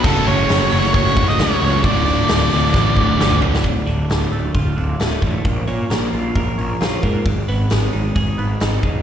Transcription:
0.04 0.24 F#1 loud
0.04 0.70 F#2 medium
0.04 0.70 C#3 loud
0.04 0.71 F#3 medium
0.04 0.72 A3 loud
0.04 0.71 C#4 medium
0.04 0.70 F#4 loud
0.04 0.27 A4 loud
0.04 kick loud
0.04 crash loud
0.27 0.47 F#1 medium
0.27 0.90 C#5 loud
0.27 open hi-hat medium
0.49 0.69 F#1 medium
0.49 snare loud
0.49 open hi-hat medium
0.71 0.92 F#1 medium
0.71 1.84 F#2 medium
0.71 1.84 C#3 medium
0.71 1.83 F#3 medium
0.71 1.86 A3 medium
0.71 1.83 C#4 medium
0.71 1.83 F#4 medium
0.71 open hi-hat medium
0.84 snare soft
0.94 1.14 F#1 medium
0.94 1.29 C#5 loud
0.94 kick loud
0.94 open hi-hat medium
1.17 1.36 F#1 loud
1.17 kick medium
1.17 open hi-hat medium
1.28 1.40 D#5 loud
1.28 snare soft
1.39 1.59 C#2 loud
1.39 1.83 F#2 medium
1.39 1.84 C#3 medium
1.39 1.84 F#3 medium
1.39 1.84 C#5 loud
1.39 snare loud
1.39 open hi-hat medium
1.61 1.86 C#2 medium
1.61 open hi-hat medium
1.84 2.23 D1 loud
1.84 2.51 D2 medium
1.84 2.51 A2 medium
1.84 2.51 D3 loud
1.84 2.51 A3 loud
1.84 2.50 F4 loud
1.84 3.38 D5 loud
1.84 kick loud
1.84 open hi-hat medium
2.06 open hi-hat medium
2.28 2.49 D1 loud
2.28 snare loud
2.28 open hi-hat medium
2.51 2.71 D1 medium
2.51 3.64 D2 medium
2.51 3.64 A2 medium
2.51 3.63 D3 medium
2.51 3.63 A3 medium
2.51 3.63 F4 medium
2.51 open hi-hat medium
2.64 snare soft
2.74 2.94 A1 medium
2.74 kick loud
2.74 snare medium
2.97 3.16 D1 medium
2.97 kick medium
3.19 3.39 G1 medium
3.19 3.63 D2 medium
3.19 3.64 A2 medium
3.19 3.64 D3 medium
3.19 snare medium
3.31 mid tom medium
3.42 3.61 D1 medium
3.42 floor tom loud
3.55 snare medium
3.64 3.81 D1 medium
3.64 4.77 D2 medium
3.64 kick medium
3.64 open hi-hat medium
3.87 4.03 D1 medium
3.87 4.75 D3 medium
3.87 open hi-hat soft
4.09 4.26 D1 medium
4.09 5.21 A2 medium
4.09 snare loud
4.09 open hi-hat medium
4.32 4.49 D1 medium
4.32 4.99 A3 medium
4.32 open hi-hat soft
4.55 4.71 D1 medium
4.55 5.45 F4 medium
4.55 kick medium
4.55 open hi-hat medium
4.76 4.93 D1 medium
4.76 5.45 D3 medium
4.76 open hi-hat soft
5.00 5.16 D1 medium
5.00 5.45 A3 medium
5.00 snare loud
5.00 open hi-hat medium
5.22 5.39 A1 medium
5.22 5.45 A2 medium
5.22 kick medium
5.22 open hi-hat soft
5.45 5.61 A#1 medium
5.45 6.58 A#2 medium
5.45 kick loud
5.45 open hi-hat medium
5.67 5.84 A#2 medium
5.67 6.57 C#4 medium
5.67 open hi-hat soft
5.90 6.07 A#1 medium
5.90 7.02 A#3 medium
5.90 snare loud
5.90 open hi-hat medium
6.13 6.29 A#1 medium
6.13 6.79 F4 medium
6.13 open hi-hat soft
6.36 6.52 A#1 medium
6.36 7.26 A#4 medium
6.36 kick medium
6.36 open hi-hat medium
6.58 6.74 A#1 medium
6.58 7.26 C#4 medium
6.58 open hi-hat soft
6.81 6.97 A#1 medium
6.81 7.26 F4 medium
6.81 snare medium
6.81 open hi-hat medium
7.03 7.19 G#2 medium
7.03 7.26 A#3 medium
7.03 kick medium
7.03 open hi-hat soft
7.25 7.42 G#1 medium
7.25 8.38 G#2 medium
7.25 kick medium
7.25 open hi-hat medium
7.48 7.65 G#1 medium
7.48 8.37 B3 medium
7.48 open hi-hat soft
7.70 7.88 G#1 medium
7.70 8.82 G#3 medium
7.70 snare loud
7.70 open hi-hat medium
7.93 8.10 G#1 medium
7.93 8.60 D#4 medium
7.93 open hi-hat soft
8.15 8.32 G#1 medium
8.15 9.02 G#4 medium
8.15 kick medium
8.15 open hi-hat medium
8.38 8.55 G#1 medium
8.38 9.02 B3 medium
8.38 open hi-hat soft
8.60 8.78 G#1 medium
8.60 9.02 D#4 medium
8.60 snare loud
8.60 open hi-hat medium
8.83 9.00 D#1 medium
8.83 9.02 G#3 medium
8.83 kick medium
8.83 open hi-hat soft

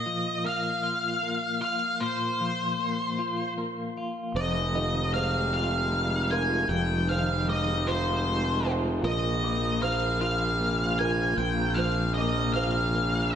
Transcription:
0.00 1.62 A#2 medium
0.00 0.83 F4 soft
0.00 0.46 D#5 medium
0.06 2.40 F3 soft
0.44 1.22 A#3 soft
0.44 1.61 F5 medium
0.83 1.60 F4 soft
1.23 2.78 A#3 soft
1.61 3.17 F4 medium
1.61 2.02 F5 medium
2.00 3.97 A#2 medium
2.00 3.53 C5 medium
2.40 4.36 F3 soft
2.79 3.56 A#3 soft
3.19 3.96 F4 soft
3.58 4.36 A#3 soft
3.97 4.36 F4 medium
4.35 6.66 F1 medium
4.35 6.32 F2 soft
4.35 13.35 C3 soft
4.35 13.35 F3 soft
4.35 9.01 G#3 soft
4.35 9.01 D#4 medium
4.35 4.75 C5 medium
4.35 5.13 D#5 medium
4.75 6.71 D#3 soft
4.75 5.14 D#5 medium
5.14 5.91 G#3 soft
5.14 5.93 C5 soft
5.14 5.53 F5 medium
5.54 6.32 F4 soft
5.54 6.34 F5 medium
5.92 7.47 G#3 soft
6.31 7.87 F4 medium
6.31 7.10 A#4 medium
6.31 6.69 G#5 medium
6.69 9.00 F1 medium
6.69 8.66 F2 medium
6.69 7.06 G5 medium
7.09 9.05 D#3 soft
7.09 7.49 C5 medium
7.09 7.46 F5 medium
7.48 8.25 G#3 soft
7.48 7.89 D#5 medium
7.48 7.88 D6 medium
7.87 8.65 F4 soft
7.87 8.71 C5 medium
7.87 8.64 C5 medium
8.26 9.05 G#3 soft
8.65 10.21 F4 medium
8.65 9.05 C5 medium
9.03 11.34 A#1 medium
9.03 11.00 A#2 medium
9.03 13.35 A#3 soft
9.03 13.35 F4 medium
9.03 9.44 A#4 medium
9.03 9.82 D#5 medium
9.43 11.76 F3 soft
9.43 9.83 D6 medium
9.82 10.59 A#3 soft
9.82 10.61 C5 medium
9.82 10.19 F5 medium
10.21 10.99 F4 medium
10.21 11.02 F5 medium
10.60 12.15 A#3 soft
10.99 12.55 F4 medium
10.99 11.78 A#4 medium
10.99 11.37 G#5 medium
11.38 13.35 A#1 medium
11.38 13.33 A#2 medium
11.38 11.78 G5 medium
11.74 13.35 F3 soft
11.74 12.17 C5 medium
11.74 12.12 F5 medium
12.14 12.94 A#3 medium
12.14 12.53 D#5 medium
12.14 12.56 D6 medium
12.54 13.33 F4 medium
12.54 13.33 C5 medium
12.54 13.35 F5 medium
12.95 13.35 A#3 soft

